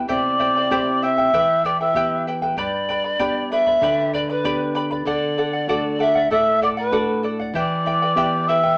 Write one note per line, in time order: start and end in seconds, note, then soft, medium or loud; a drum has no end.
0.08 1.29 C3 medium
0.08 0.39 E4 medium
0.08 0.40 G4 medium
0.08 0.39 C5 medium
0.08 1.05 D5 loud
0.08 0.38 E5 medium
0.08 0.39 G5 medium
0.08 1.05 D6 medium
0.08 bombo low medium
0.39 0.55 E4 medium
0.39 0.56 C5 medium
0.39 0.55 E5 medium
0.39 0.55 G5 medium
0.39 bombo low medium
0.56 0.71 E4 soft
0.56 0.71 C5 soft
0.56 0.71 G5 soft
0.71 1.31 C4 soft
0.71 1.31 E4 soft
0.71 1.02 E4 medium
0.71 1.31 G4 medium
0.71 1.02 G4 medium
0.71 1.02 C5 medium
0.71 1.01 E5 medium
0.71 1.03 G5 medium
0.71 bombo low medium
1.02 1.18 E4 medium
1.02 1.17 C5 medium
1.02 1.18 E5 medium
1.02 1.66 E5 loud
1.02 1.17 G5 medium
1.02 1.67 E6 medium
1.18 1.33 E4 soft
1.18 1.34 C5 soft
1.18 1.33 G5 medium
1.18 bombo low medium
1.33 2.54 E3 medium
1.33 1.64 E4 medium
1.33 1.64 G4 medium
1.33 1.64 B4 medium
1.33 1.63 E5 medium
1.33 1.65 G5 medium
1.33 bombo low medium
1.64 1.80 E4 medium
1.64 1.80 B4 medium
1.64 1.79 D5 medium
1.64 1.80 E5 medium
1.64 1.80 G5 medium
1.64 1.81 D6 medium
1.64 bombo low medium
1.80 1.95 E4 soft
1.80 1.95 B4 soft
1.80 2.23 E5 medium
1.80 1.96 G5 soft
1.80 2.24 E6 medium
1.94 2.55 B3 medium
1.94 2.56 E4 soft
1.94 2.27 E4 medium
1.94 2.56 G4 medium
1.94 2.27 G4 medium
1.94 2.27 B4 medium
1.94 2.26 E5 medium
1.94 2.27 G5 medium
1.94 bombo low medium
2.27 2.43 E4 medium
2.27 2.42 B4 medium
2.27 2.42 E5 medium
2.27 2.41 G5 medium
2.41 2.58 E4 soft
2.41 2.57 B4 medium
2.41 2.56 G5 medium
2.41 bombo low medium
2.57 3.78 G2 medium
2.57 2.89 G4 medium
2.57 2.89 B4 medium
2.57 3.52 D5 medium
2.57 2.89 D5 medium
2.57 2.88 G5 medium
2.57 2.89 B5 medium
2.57 bombo low medium
2.89 3.04 B4 medium
2.89 3.04 D5 medium
2.89 3.04 G5 medium
2.89 3.03 B5 medium
2.89 bombo low soft
3.04 3.19 B4 soft
3.04 3.19 D5 soft
3.04 3.19 B5 medium
3.19 3.80 B3 medium
3.19 3.80 D4 soft
3.19 3.51 G4 medium
3.19 3.80 G4 medium
3.19 3.51 B4 medium
3.19 3.51 D5 medium
3.19 3.51 G5 medium
3.19 3.51 B5 medium
3.19 bombo low medium
3.51 3.67 B4 medium
3.51 3.66 D5 medium
3.51 4.13 E5 loud
3.51 3.67 G5 medium
3.51 3.65 B5 medium
3.66 3.82 B4 soft
3.66 3.82 D5 soft
3.66 3.82 B5 soft
3.66 bombo low medium
3.82 5.02 D3 medium
3.82 4.13 G4 medium
3.82 4.13 B4 medium
3.82 4.13 D5 medium
3.82 4.12 G5 medium
3.82 4.13 B5 medium
3.82 bombo low medium
4.14 4.29 B4 medium
4.14 4.28 D5 medium
4.14 4.29 D5 medium
4.14 4.29 G5 medium
4.14 4.28 B5 medium
4.14 bombo low medium
4.30 4.73 B4 medium
4.30 4.44 B4 soft
4.30 4.44 D5 soft
4.30 4.44 B5 medium
4.44 5.04 B3 medium
4.44 5.05 D4 soft
4.44 4.75 G4 medium
4.44 5.04 G4 medium
4.44 4.74 B4 medium
4.44 4.74 D5 medium
4.44 4.74 G5 medium
4.44 4.75 B5 medium
4.44 bombo low medium
4.75 4.91 B4 medium
4.75 4.91 D5 medium
4.75 4.91 G5 medium
4.75 4.90 B5 medium
4.91 5.07 B4 soft
4.91 5.06 D5 soft
4.91 5.06 B5 medium
4.91 bombo low soft
5.06 6.27 D3 medium
5.06 5.36 A4 medium
5.06 5.37 D5 medium
5.06 6.02 D5 medium
5.06 5.38 F#5 medium
5.06 bombo low medium
5.38 5.53 A4 medium
5.38 5.53 D5 medium
5.38 5.52 F#5 medium
5.53 5.68 D5 soft
5.53 5.68 F#5 medium
5.67 6.28 A3 medium
5.67 6.29 D4 soft
5.67 6.29 F#4 medium
5.67 5.98 A4 medium
5.67 5.99 D5 loud
5.67 5.99 F#5 medium
5.67 bombo low medium
5.99 6.15 A4 medium
5.99 6.15 D5 medium
5.99 6.31 E5 medium
5.99 6.14 F#5 medium
6.15 6.30 D5 soft
6.15 6.31 F#5 medium
6.15 bombo low medium
6.31 7.51 A2 medium
6.31 6.60 A4 medium
6.31 6.61 D5 medium
6.31 6.60 E5 medium
6.31 6.62 F#5 medium
6.31 6.60 E6 medium
6.31 bombo low medium
6.61 6.77 A4 medium
6.61 6.77 D5 medium
6.61 6.69 D5 medium
6.61 6.76 F#5 medium
6.61 6.70 D6 medium
6.61 bombo low medium
6.77 7.21 B4 medium
6.77 6.91 D5 soft
6.77 6.92 F#5 medium
6.77 7.22 B5 medium
6.91 7.52 A3 medium
6.91 7.53 D4 soft
6.91 7.53 F#4 medium
6.91 7.22 A4 medium
6.91 7.23 D5 medium
6.91 7.23 F#5 medium
6.91 bombo low medium
7.23 7.39 A4 medium
7.23 7.40 D5 medium
7.23 7.38 F#5 medium
7.39 7.55 D5 soft
7.39 7.55 F#5 soft
7.39 bombo low medium
7.54 8.75 E3 medium
7.54 7.85 E4 medium
7.54 7.86 G4 medium
7.54 7.85 B4 medium
7.54 8.49 D5 medium
7.54 7.85 E5 medium
7.54 7.86 G5 medium
7.54 8.50 D6 medium
7.54 bombo low medium
7.86 8.02 E4 medium
7.86 8.02 B4 medium
7.86 8.02 E5 medium
7.86 8.01 G5 medium
7.86 bombo low medium
8.02 8.16 E4 soft
8.02 8.16 B4 soft
8.02 8.17 G5 medium
8.16 8.77 B3 soft
8.16 8.77 E4 soft
8.16 8.48 E4 medium
8.16 8.77 G4 medium
8.16 8.48 G4 medium
8.16 8.48 B4 medium
8.16 8.47 E5 medium
8.16 8.48 G5 medium
8.16 bombo low medium
8.47 8.63 E4 medium
8.47 8.63 B4 medium
8.47 8.78 E5 loud
8.47 8.64 E5 medium
8.47 8.62 G5 medium
8.47 8.78 E6 loud
8.63 8.78 E4 soft
8.63 8.78 B4 soft
8.63 8.78 G5 medium
8.63 bombo low medium